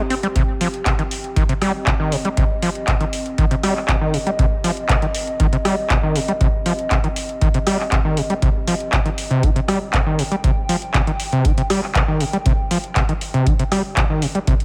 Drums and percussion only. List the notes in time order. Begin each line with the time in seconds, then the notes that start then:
0.10 open hi-hat
0.23 closed hi-hat
0.36 kick, closed hi-hat
0.61 open hi-hat
0.74 closed hi-hat
0.86 kick, clap, closed hi-hat
0.99 closed hi-hat
1.11 open hi-hat
1.24 closed hi-hat
1.36 kick, closed hi-hat
1.49 closed hi-hat
1.62 cross-stick, open hi-hat
1.87 kick, clap, closed hi-hat
2.12 open hi-hat
2.25 closed hi-hat
2.37 kick, closed hi-hat
2.62 open hi-hat
2.75 closed hi-hat
2.88 kick, clap, closed hi-hat
3.01 closed hi-hat
3.13 open hi-hat
3.26 closed hi-hat
3.38 kick, closed hi-hat
3.51 closed hi-hat
3.63 cross-stick, open hi-hat
3.76 clap
3.89 kick, clap, closed hi-hat
4.14 open hi-hat
4.27 closed hi-hat
4.39 kick, closed hi-hat
4.64 open hi-hat
4.77 closed hi-hat
4.89 kick, clap, closed hi-hat
5.02 closed hi-hat
5.15 open hi-hat
5.27 closed hi-hat
5.40 kick, closed hi-hat
5.53 closed hi-hat
5.65 cross-stick, open hi-hat
5.90 kick, clap, closed hi-hat
6.16 open hi-hat
6.28 closed hi-hat
6.41 kick, closed hi-hat
6.66 open hi-hat
6.79 closed hi-hat
6.91 kick, clap, closed hi-hat
7.04 closed hi-hat
7.16 open hi-hat
7.29 closed hi-hat
7.41 kick, closed hi-hat
7.54 closed hi-hat
7.67 cross-stick, open hi-hat
7.79 clap
7.92 kick, clap, closed hi-hat
8.17 open hi-hat
8.30 closed hi-hat
8.42 kick, closed hi-hat
8.68 open hi-hat
8.80 closed hi-hat
8.93 kick, clap, closed hi-hat
9.06 closed hi-hat
9.18 open hi-hat
9.31 closed hi-hat
9.43 kick, closed hi-hat
9.56 closed hi-hat
9.68 cross-stick, open hi-hat
9.94 kick, clap, closed hi-hat
10.19 open hi-hat
10.32 closed hi-hat
10.44 kick, closed hi-hat
10.69 open hi-hat
10.82 closed hi-hat
10.94 kick, clap, closed hi-hat
11.07 closed hi-hat
11.20 open hi-hat
11.32 closed hi-hat
11.45 kick, closed hi-hat
11.58 closed hi-hat
11.70 cross-stick, open hi-hat
11.83 clap
11.95 kick, clap, closed hi-hat
12.20 open hi-hat
12.33 closed hi-hat
12.46 kick, closed hi-hat
12.71 open hi-hat
12.84 closed hi-hat
12.96 kick, clap, closed hi-hat
13.09 closed hi-hat
13.21 open hi-hat
13.34 closed hi-hat
13.47 kick, closed hi-hat
13.59 closed hi-hat
13.72 cross-stick, open hi-hat
13.97 kick, clap, closed hi-hat
14.22 open hi-hat
14.35 closed hi-hat
14.47 kick, closed hi-hat
14.60 closed hi-hat